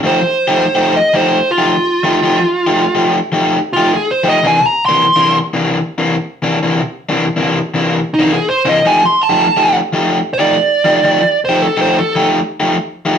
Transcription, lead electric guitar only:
0.06 C5
0.96 D#5
1.16 C5
1.51 F4
3.73 F4
3.93 G#4
4.11 C5
4.29 D#5
4.47 G#5
4.66 A#5
4.86 C6
8.14 D#4
8.33 G#4
8.50 C5
8.69 D#5
8.87 G#5
9.05 C6
9.23 A5
10.33 D5
11.45 C5
11.62 A4
11.81 C5
11.99 A4

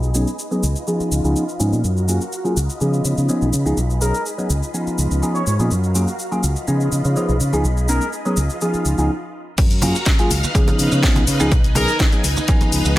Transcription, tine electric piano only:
0.14 F#3 B3 C#4 D#4 G#4
0.51 F#3 B3 C#4 D#4 G#4
0.87 F3 B3 C#4 D#4 G#4
1.24 F3 B3 C#4 D#4 G#4
1.59 F3 B3 C#4 D#4 G#4
2.08 F#3 A#3 C#4 F4 G#4
2.44 F#3 A#3 C#4 F4 G#4
2.80 F3 B3 C#4 D#4 G#4
3.29 F3 B3 C#4 D#4 G#4
3.66 F3 B3 C#4 D#4 G#4
4.01 F#3 B3 C#4 D#4 G#4
4.38 F#3 B3 C#4 D#4 G#4
4.74 F3 B3 C#4 D#4 G#4
5.22 F3 B3 C#4 D#4 G#4
5.59 F3 B3 C#4 D#4 G#4
5.95 F#3 A#3 C#4 F4 G#4
6.31 F#3 A#3 C#4 F4 G#4
6.68 F3 B3 C#4 D#4 G#4
7.16 F3 B3 C#4 D#4 G#4
7.53 F3 B3 C#4 D#4 G#4
7.88 F#3 B3 C#4 D#4 G#4
8.25 F#3 B3 C#4 D#4 G#4
8.61 F3 B3 C#4 D#4 G#4
8.98 F3 B3 C#4 D#4 G#4
9.82 F#3 A#3 C#4 F4 G#4
10.19 F#3 A#3 C#4 F4 G#4
10.55 F3 B3 C#4 D#4 G#4
11.03 F3 B3 C#4 D#4 G#4
11.40 F3 B3 C#4 D#4 G#4
11.76 F#3 B3 C#4 D#4 G#4
12.12 F#3 B3 C#4 D#4 G#4
12.48 F3 B3 C#4 D#4 G#4

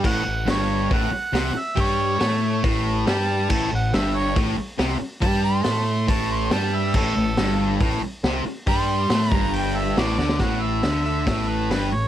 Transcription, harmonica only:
0.07 F#5
0.51 C#5
0.94 F#5
1.59 E5
1.81 C#5
3.09 A5
3.75 F#5
3.95 E5
4.16 C#5
5.24 A5
5.45 C6
6.11 A5
6.32 C6
6.53 A5
6.76 E5
6.96 A4
8.70 C6
9.33 A#5
9.55 G5
9.77 E5
9.98 D5
10.41 F#5
10.62 E5
11.06 E5
11.49 B4
11.92 C#5

